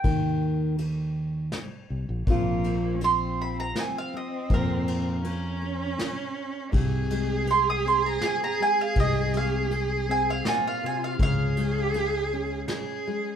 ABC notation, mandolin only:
X:1
M:3/4
L:1/16
Q:1/4=81
K:Bbdor
V:1 name="Mandolin"
g8- g2 z2 | z4 c'2 =b _b a f e2 | B12 | z4 c' e' c' b a b a f |
e2 f2 z2 a f a f a f | f12 |]